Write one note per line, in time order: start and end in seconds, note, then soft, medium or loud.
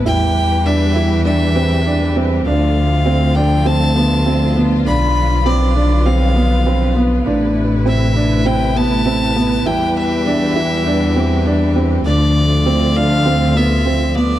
0.00 2.41 B4 medium
0.06 2.43 E2 medium
0.06 2.43 E3 medium
0.06 2.43 G3 medium
0.06 0.55 E4 medium
0.06 2.44 G4 medium
0.06 0.67 G5 loud
0.66 0.91 D4 medium
0.66 1.24 E5 loud
0.95 1.20 E4 medium
1.25 1.50 D4 medium
1.25 2.11 E5 medium
1.56 1.80 C4 medium
1.86 2.11 D4 medium
2.16 2.41 C4 medium
2.46 4.83 D2 loud
2.46 7.22 D3 medium
2.46 4.83 F3 medium
2.46 4.83 A3 medium
2.46 2.95 D4 medium
2.46 7.22 F4 medium
2.46 3.37 F5 medium
3.06 3.30 C4 medium
3.35 3.60 D4 medium
3.35 3.67 G5 loud
3.65 3.90 C4 medium
3.65 4.56 A5 loud
3.96 4.20 B3 medium
4.26 4.51 C4 medium
4.56 4.81 B3 medium
4.85 7.23 B1 medium
4.85 7.23 F3 medium
4.85 5.35 D4 medium
4.85 12.02 B4 medium
4.85 5.48 B5 loud
5.46 5.70 C4 medium
5.46 6.07 D5 loud
5.76 6.01 D4 medium
6.05 6.31 C4 medium
6.05 6.96 F5 medium
6.36 6.60 B3 medium
6.66 6.91 C4 medium
6.96 7.21 B3 medium
7.26 9.63 A1 medium
7.26 9.63 C3 medium
7.26 9.64 A3 medium
7.26 7.75 D4 medium
7.26 9.63 E4 medium
7.86 8.10 C4 medium
7.86 8.48 E5 medium
8.16 8.40 D4 medium
8.46 8.70 C4 medium
8.46 8.78 G5 loud
8.76 9.01 B3 medium
8.76 9.68 A5 loud
9.06 9.30 C4 medium
9.36 9.61 B3 medium
9.65 12.03 E2 loud
9.65 12.04 E3 medium
9.65 12.04 G3 medium
9.65 10.15 E4 medium
9.65 12.04 G4 medium
9.65 9.98 G5 loud
9.97 11.76 E5 medium
10.26 10.51 D4 medium
10.56 10.81 E4 medium
10.86 11.11 D4 medium
11.16 11.41 C4 medium
11.46 11.71 D4 medium
11.76 12.01 C4 medium
12.05 14.39 D2 loud
12.05 14.39 D3 medium
12.05 14.39 F3 medium
12.05 14.39 A3 medium
12.05 12.55 D4 medium
12.05 14.39 F4 medium
12.05 12.98 D5 loud
12.66 12.91 C4 medium
12.96 13.21 D4 medium
12.96 13.57 F5 loud
13.26 13.51 C4 loud
13.56 13.81 B3 medium
13.56 14.17 E5 loud
13.86 14.11 C4 medium
14.15 14.39 B3 medium
14.15 14.39 D5 loud